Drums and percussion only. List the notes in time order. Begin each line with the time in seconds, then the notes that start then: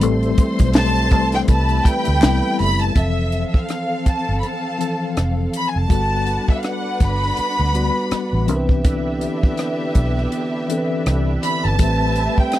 0.01 closed hi-hat
0.23 closed hi-hat
0.38 kick, closed hi-hat
0.59 kick, closed hi-hat
0.73 snare, clap, closed hi-hat
0.95 closed hi-hat
1.11 kick, closed hi-hat
1.32 snare, closed hi-hat
1.48 kick, closed hi-hat
1.69 closed hi-hat
1.85 kick, closed hi-hat
2.05 closed hi-hat
2.22 snare, clap, closed hi-hat
2.59 open hi-hat
2.79 closed hi-hat
2.96 kick, closed hi-hat
3.32 closed hi-hat
3.54 kick
3.69 cross-stick, closed hi-hat
4.06 kick, closed hi-hat
4.43 closed hi-hat
4.81 closed hi-hat
5.17 cross-stick, closed hi-hat
5.54 closed hi-hat
5.90 kick, closed hi-hat
6.27 closed hi-hat
6.48 kick
6.63 cross-stick, closed hi-hat
7.00 kick, closed hi-hat
7.23 cross-stick
7.37 closed hi-hat
7.75 closed hi-hat
8.11 cross-stick, closed hi-hat
8.48 closed hi-hat
8.69 kick
8.85 kick, closed hi-hat
9.21 closed hi-hat
9.43 kick
9.57 cross-stick, closed hi-hat
9.95 kick, closed hi-hat
10.18 cross-stick
10.32 closed hi-hat
10.70 closed hi-hat
11.06 cross-stick, closed hi-hat
11.43 closed hi-hat
11.79 kick, closed hi-hat
12.16 closed hi-hat
12.38 kick
12.52 cross-stick, closed hi-hat